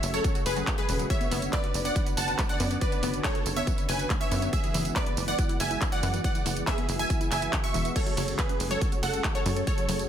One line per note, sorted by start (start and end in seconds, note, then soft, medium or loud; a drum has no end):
0.03 0.21 F#1 loud
0.03 0.18 C#3 medium
0.03 0.18 G#3 loud
0.03 0.18 A3 medium
0.03 0.18 F#4 loud
0.03 open hi-hat loud
0.03 tambourine medium
0.14 0.21 F#3 medium
0.14 0.41 A4 medium
0.14 0.41 C#5 medium
0.14 0.41 C#5 loud
0.14 closed hi-hat soft
0.14 tambourine soft
0.24 0.39 C#3 medium
0.24 0.39 G#3 loud
0.24 0.39 A3 medium
0.24 0.27 F#4 medium
0.24 0.39 F#4 medium
0.24 kick loud
0.24 closed hi-hat medium
0.24 tambourine soft
0.35 0.43 F#4 medium
0.35 closed hi-hat medium
0.35 tambourine soft
0.46 0.63 F#1 loud
0.46 0.73 G#4 medium
0.46 0.73 B4 loud
0.46 0.73 B4 medium
0.46 open hi-hat loud
0.46 tambourine medium
0.56 0.64 C#3 medium
0.56 0.62 F#3 loud
0.56 0.64 G#3 medium
0.56 0.64 A3 loud
0.56 0.64 F#4 medium
0.56 closed hi-hat soft
0.56 tambourine soft
0.67 0.82 C#3 medium
0.67 0.70 F#3 medium
0.67 0.82 G#3 medium
0.67 0.82 A3 medium
0.67 0.82 F#4 medium
0.67 kick loud
0.67 clap loud
0.67 closed hi-hat medium
0.67 tambourine soft
0.78 0.81 G#3 medium
0.78 1.05 G#4 medium
0.78 1.05 B4 medium
0.78 1.05 B4 loud
0.78 closed hi-hat medium
0.89 1.06 E1 loud
0.89 0.94 C#3 medium
0.89 1.04 C#3 medium
0.89 1.04 G#3 medium
0.89 1.04 A3 medium
0.89 1.04 F#4 medium
0.89 open hi-hat medium
0.89 tambourine medium
0.99 1.02 F#3 medium
0.99 closed hi-hat medium
0.99 tambourine soft
1.10 1.25 D3 medium
1.10 1.25 B3 medium
1.10 1.25 C#4 medium
1.10 1.25 F#4 medium
1.10 1.47 C#5 medium
1.10 1.47 E5 loud
1.10 kick loud
1.10 closed hi-hat medium
1.10 tambourine soft
1.21 1.28 B3 medium
1.21 closed hi-hat soft
1.21 tambourine soft
1.31 1.49 F#1 loud
1.31 1.39 D3 medium
1.31 1.39 B3 loud
1.31 1.39 B3 medium
1.31 1.39 C#4 medium
1.31 1.39 F#4 medium
1.31 open hi-hat loud
1.31 tambourine medium
1.42 1.57 D3 medium
1.42 1.57 B3 medium
1.42 1.57 C#4 medium
1.42 1.57 F#4 medium
1.42 closed hi-hat medium
1.42 tambourine soft
1.53 1.61 A3 medium
1.53 1.80 B4 medium
1.53 1.80 D5 loud
1.53 kick loud
1.53 clap loud
1.53 closed hi-hat medium
1.53 tambourine soft
1.64 1.67 F#4 medium
1.64 closed hi-hat medium
1.74 1.92 F#1 loud
1.74 1.89 D3 medium
1.74 1.89 B3 loud
1.74 1.89 C#4 medium
1.74 1.89 F#4 medium
1.74 open hi-hat medium
1.74 tambourine medium
1.85 1.93 B3 medium
1.85 2.12 D5 medium
1.85 2.12 F#5 loud
1.85 closed hi-hat medium
1.85 tambourine soft
1.96 2.11 D3 medium
1.96 2.11 B3 medium
1.96 2.11 C#4 medium
1.96 2.11 F#4 loud
1.96 1.99 B4 medium
1.96 kick loud
1.96 closed hi-hat medium
1.96 tambourine soft
2.06 2.14 B4 medium
2.06 closed hi-hat medium
2.06 tambourine soft
2.17 2.35 F#1 medium
2.17 2.45 F#5 medium
2.17 2.45 A5 loud
2.17 2.45 A5 medium
2.17 open hi-hat loud
2.17 tambourine medium
2.28 2.35 D3 loud
2.28 2.35 B3 medium
2.28 2.35 C#4 medium
2.28 2.35 F#4 medium
2.28 2.33 B4 medium
2.28 closed hi-hat soft
2.28 tambourine soft
2.39 2.54 D3 medium
2.39 2.46 A3 medium
2.39 2.54 B3 medium
2.39 2.54 C#4 medium
2.39 2.54 F#4 medium
2.39 kick loud
2.39 clap loud
2.39 closed hi-hat medium
2.39 tambourine soft
2.49 2.77 D5 medium
2.49 2.77 F#5 medium
2.49 2.77 F#5 loud
2.49 closed hi-hat medium
2.60 2.78 F#2 loud
2.60 2.75 D3 medium
2.60 2.65 B3 loud
2.60 2.75 B3 medium
2.60 2.75 C#4 medium
2.60 2.75 F#4 medium
2.60 open hi-hat medium
2.60 tambourine medium
2.71 2.76 B3 medium
2.71 closed hi-hat medium
2.71 tambourine soft
2.81 2.96 D3 medium
2.81 2.97 B3 medium
2.81 2.97 C#4 medium
2.81 2.96 F#4 medium
2.81 3.18 B4 medium
2.81 3.18 D5 loud
2.81 3.18 D5 medium
2.81 kick loud
2.81 closed hi-hat medium
2.81 tambourine soft
2.92 3.00 B3 medium
2.92 closed hi-hat medium
2.92 tambourine soft
3.03 3.21 F#1 loud
3.03 3.10 D3 medium
3.03 3.11 B3 loud
3.03 3.10 B3 medium
3.03 3.10 C#4 medium
3.03 3.10 F#4 medium
3.03 open hi-hat loud
3.03 tambourine medium
3.14 3.29 D3 medium
3.14 3.29 B3 loud
3.14 3.29 C#4 medium
3.14 3.29 F#4 medium
3.14 closed hi-hat medium
3.14 tambourine soft
3.24 3.32 A3 medium
3.24 3.52 A4 medium
3.24 3.52 C#5 medium
3.24 3.52 C#5 loud
3.24 kick loud
3.24 clap loud
3.24 closed hi-hat medium
3.24 tambourine soft
3.35 3.38 F#4 medium
3.35 closed hi-hat medium
3.46 3.63 F#1 loud
3.46 3.61 D3 loud
3.46 3.61 B3 medium
3.46 3.61 C#4 loud
3.46 3.61 F#4 medium
3.46 open hi-hat medium
3.46 tambourine medium
3.56 3.64 B3 medium
3.56 3.84 C#5 medium
3.56 3.84 E5 loud
3.56 closed hi-hat medium
3.56 tambourine soft
3.67 3.82 D3 medium
3.67 3.82 B3 loud
3.67 3.82 C#4 medium
3.67 3.82 F#4 medium
3.67 3.70 B4 medium
3.67 kick loud
3.67 closed hi-hat medium
3.67 tambourine soft
3.78 3.86 B4 medium
3.78 closed hi-hat medium
3.78 tambourine soft
3.89 4.06 F#1 medium
3.89 4.16 B4 medium
3.89 4.16 G#5 loud
3.89 4.16 G#5 medium
3.89 open hi-hat loud
3.89 tambourine medium
3.99 4.07 D3 medium
3.99 4.07 B3 medium
3.99 4.07 C#4 loud
3.99 4.07 F#4 medium
3.99 4.04 B4 medium
3.99 closed hi-hat medium
3.99 tambourine soft
4.10 4.25 D3 medium
4.10 4.18 A3 medium
4.10 4.25 B3 medium
4.10 4.25 C#4 medium
4.10 4.25 F#4 medium
4.10 kick loud
4.10 clap loud
4.10 closed hi-hat medium
4.10 tambourine soft
4.21 4.48 C#5 medium
4.21 4.48 E5 medium
4.21 4.48 E5 loud
4.21 closed hi-hat medium
4.31 4.49 F#2 loud
4.31 4.46 D3 medium
4.31 4.46 B3 medium
4.31 4.37 B3 loud
4.31 4.46 C#4 medium
4.31 4.46 F#4 medium
4.31 open hi-hat medium
4.31 tambourine medium
4.42 4.47 B3 medium
4.42 closed hi-hat medium
4.42 tambourine soft
4.53 4.68 E3 medium
4.53 4.68 G#3 medium
4.53 4.68 B3 medium
4.53 4.68 F#4 medium
4.53 4.89 G#4 medium
4.53 4.89 E5 loud
4.53 kick loud
4.53 closed hi-hat medium
4.53 tambourine soft
4.64 4.71 E3 medium
4.64 closed hi-hat medium
4.64 tambourine soft
4.74 4.92 F#1 loud
4.74 4.82 E3 loud
4.74 4.82 E3 medium
4.74 4.82 G#3 medium
4.74 4.82 B3 medium
4.74 4.82 F#4 medium
4.74 open hi-hat loud
4.74 tambourine medium
4.85 5.00 E3 medium
4.85 5.00 G#3 medium
4.85 5.00 B3 medium
4.85 5.00 F#4 medium
4.85 closed hi-hat medium
4.85 tambourine soft
4.96 5.03 D3 medium
4.96 5.23 B4 medium
4.96 5.23 D5 loud
4.96 kick loud
4.96 clap loud
4.96 closed hi-hat medium
4.96 tambourine soft
5.06 5.10 B3 medium
5.06 closed hi-hat medium
5.17 5.35 F#1 loud
5.17 5.32 E3 loud
5.17 5.32 G#3 medium
5.17 5.32 B3 medium
5.17 5.32 F#4 loud
5.17 open hi-hat medium
5.17 tambourine medium
5.28 5.36 E3 medium
5.28 5.55 D5 medium
5.28 5.55 F#5 loud
5.28 closed hi-hat medium
5.28 tambourine soft
5.39 5.54 E3 medium
5.39 5.54 G#3 medium
5.39 5.54 B3 loud
5.39 5.42 E4 medium
5.39 5.54 F#4 loud
5.39 kick loud
5.39 closed hi-hat medium
5.39 tambourine soft
5.49 5.57 E4 medium
5.49 closed hi-hat medium
5.49 tambourine soft
5.60 5.78 F#1 medium
5.60 5.87 E5 medium
5.60 5.87 G#5 loud
5.60 open hi-hat loud
5.60 tambourine medium
5.71 5.78 E3 medium
5.71 5.78 G#3 medium
5.71 5.78 B3 medium
5.71 5.76 E4 medium
5.71 5.78 F#4 medium
5.71 closed hi-hat medium
5.71 tambourine soft
5.81 5.89 D3 medium
5.81 5.97 E3 medium
5.81 5.97 G#3 medium
5.81 5.97 B3 medium
5.81 5.97 F#4 loud
5.81 kick loud
5.81 clap loud
5.81 closed hi-hat medium
5.81 tambourine soft
5.92 6.20 D5 medium
5.92 6.19 F#5 medium
5.92 6.20 F#5 loud
5.92 closed hi-hat medium
6.03 6.21 F#2 loud
6.03 6.08 E3 loud
6.03 6.18 E3 medium
6.03 6.18 G#3 medium
6.03 6.18 B3 medium
6.03 6.18 F#4 medium
6.03 open hi-hat medium
6.03 tambourine medium
6.14 6.19 E3 medium
6.14 closed hi-hat medium
6.14 tambourine soft
6.24 6.39 E3 medium
6.24 6.39 G#3 medium
6.24 6.39 B3 medium
6.24 6.39 F#4 medium
6.24 6.61 D5 medium
6.24 6.61 F#5 loud
6.24 kick loud
6.24 closed hi-hat medium
6.24 tambourine soft
6.35 6.43 E3 medium
6.35 closed hi-hat medium
6.35 tambourine soft
6.46 6.63 F#1 loud
6.46 6.53 E3 loud
6.46 6.53 E3 medium
6.46 6.53 G#3 medium
6.46 6.53 B3 medium
6.46 6.53 F#4 medium
6.46 open hi-hat loud
6.46 tambourine medium
6.57 6.72 E3 medium
6.57 6.72 G#3 medium
6.57 6.72 B3 medium
6.57 6.72 F#4 medium
6.57 closed hi-hat medium
6.57 tambourine soft
6.67 6.75 D3 medium
6.67 6.95 G#4 medium
6.67 6.95 E5 loud
6.67 6.95 E5 medium
6.67 kick loud
6.67 clap loud
6.67 closed hi-hat medium
6.67 tambourine soft
6.78 6.81 B3 medium
6.78 closed hi-hat medium
6.89 7.06 F#1 loud
6.89 7.04 E3 medium
6.89 7.04 G#3 medium
6.89 7.04 B3 medium
6.89 7.04 F#4 loud
6.89 open hi-hat medium
6.89 tambourine medium
6.99 7.07 E3 medium
6.99 7.27 E5 medium
6.99 7.27 G#5 loud
6.99 closed hi-hat medium
6.99 tambourine soft
7.10 7.25 E3 loud
7.10 7.25 G#3 loud
7.10 7.25 B3 medium
7.10 7.13 E4 medium
7.10 7.25 F#4 loud
7.10 kick loud
7.10 closed hi-hat medium
7.10 tambourine soft
7.21 7.28 E4 medium
7.21 closed hi-hat medium
7.21 tambourine soft
7.31 7.49 F#1 loud
7.31 7.59 E5 medium
7.31 7.59 G#5 loud
7.31 7.59 G#5 medium
7.31 clap medium
7.31 open hi-hat loud
7.31 tambourine medium
7.42 7.50 E3 medium
7.42 7.50 G#3 medium
7.42 7.50 B3 medium
7.42 7.47 E4 medium
7.42 7.50 F#4 loud
7.42 closed hi-hat medium
7.42 tambourine soft
7.53 7.61 D3 medium
7.53 7.68 E3 medium
7.53 7.68 G#3 medium
7.53 7.68 B3 medium
7.53 7.68 F#4 medium
7.53 kick loud
7.53 clap loud
7.53 closed hi-hat medium
7.53 tambourine soft
7.64 7.91 E5 medium
7.64 7.91 C#6 loud
7.64 7.91 C#6 medium
7.64 closed hi-hat medium
7.64 tambourine soft
7.74 7.92 E1 loud
7.74 7.79 E3 loud
7.74 7.89 E3 medium
7.74 7.89 G#3 medium
7.74 7.89 B3 medium
7.74 7.89 F#4 medium
7.74 open hi-hat medium
7.74 tambourine medium
7.85 7.90 E3 medium
7.85 closed hi-hat medium
7.85 tambourine soft
7.96 8.11 C#3 medium
7.96 8.11 G#3 medium
7.96 8.11 A3 medium
7.96 8.11 F#4 medium
7.96 8.32 A4 medium
7.96 8.32 C#5 loud
7.96 kick loud
7.96 closed hi-hat medium
7.96 ride medium
7.96 tambourine soft
7.96 crash medium
8.06 8.14 F#3 medium
8.06 closed hi-hat medium
8.06 tambourine soft
8.17 8.35 F#1 loud
8.17 8.25 C#3 medium
8.17 8.25 F#3 medium
8.17 8.25 G#3 medium
8.17 8.25 A3 medium
8.17 8.25 F#4 medium
8.17 open hi-hat loud
8.17 ride medium
8.17 tambourine medium
8.28 8.43 C#3 medium
8.28 8.43 G#3 medium
8.28 8.43 A3 loud
8.28 8.43 F#4 medium
8.28 closed hi-hat medium
8.28 tambourine soft
8.39 8.46 E3 medium
8.39 8.66 G#4 medium
8.39 8.66 B4 loud
8.39 kick loud
8.39 clap loud
8.39 closed hi-hat medium
8.39 ride medium
8.39 tambourine soft
8.49 8.52 C#4 medium
8.49 closed hi-hat medium
8.60 8.78 F#1 loud
8.60 8.75 C#3 medium
8.60 8.75 G#3 medium
8.60 8.75 A3 medium
8.60 8.75 F#4 medium
8.60 open hi-hat loud
8.60 ride medium
8.60 tambourine medium
8.71 8.78 F#3 medium
8.71 8.98 A4 medium
8.71 8.98 C#5 loud
8.71 closed hi-hat medium
8.71 tambourine soft
8.81 8.96 C#3 medium
8.81 8.96 G#3 medium
8.81 8.96 A3 loud
8.81 8.85 F#4 medium
8.81 8.96 F#4 medium
8.81 kick loud
8.81 closed hi-hat medium
8.81 ride medium
8.81 tambourine soft
8.92 9.00 F#4 medium
8.92 closed hi-hat medium
8.92 tambourine soft
9.03 9.21 F#1 medium
9.03 9.30 A4 medium
9.03 9.30 F#5 loud
9.03 open hi-hat loud
9.03 ride medium
9.03 tambourine medium
9.14 9.21 C#3 medium
9.14 9.21 G#3 medium
9.14 9.21 A3 medium
9.14 9.19 F#4 medium
9.14 9.21 F#4 medium
9.14 closed hi-hat medium
9.14 tambourine soft
9.24 9.39 C#3 medium
9.24 9.32 E3 medium
9.24 9.39 G#3 medium
9.24 9.39 A3 medium
9.24 9.39 F#4 medium
9.24 kick loud
9.24 clap loud
9.24 closed hi-hat medium
9.24 ride medium
9.24 tambourine soft
9.35 9.62 A4 medium
9.35 9.62 C#5 loud
9.35 9.62 C#5 medium
9.35 closed hi-hat medium
9.46 9.63 F#2 loud
9.46 9.61 C#3 medium
9.46 9.51 F#3 loud
9.46 9.61 G#3 medium
9.46 9.61 A3 medium
9.46 9.61 F#4 medium
9.46 open hi-hat medium
9.46 ride medium
9.46 tambourine medium
9.56 9.62 F#3 medium
9.56 closed hi-hat medium
9.56 tambourine soft
9.67 9.82 C#3 medium
9.67 9.82 G#3 medium
9.67 9.82 A3 medium
9.67 9.82 F#4 medium
9.67 10.04 A4 medium
9.67 10.04 C#5 loud
9.67 kick loud
9.67 closed hi-hat medium
9.67 ride medium
9.67 tambourine soft
9.78 9.86 F#3 medium
9.78 closed hi-hat medium
9.78 tambourine soft
9.88 10.06 F#1 loud
9.88 9.96 C#3 medium
9.88 9.96 F#3 medium
9.88 9.96 G#3 medium
9.88 9.96 A3 medium
9.88 9.96 F#4 medium
9.88 open hi-hat loud
9.88 ride medium
9.88 tambourine medium
9.99 10.09 C#3 medium
9.99 10.09 G#3 medium
9.99 10.09 A3 medium
9.99 10.09 F#4 medium
9.99 closed hi-hat medium
9.99 tambourine soft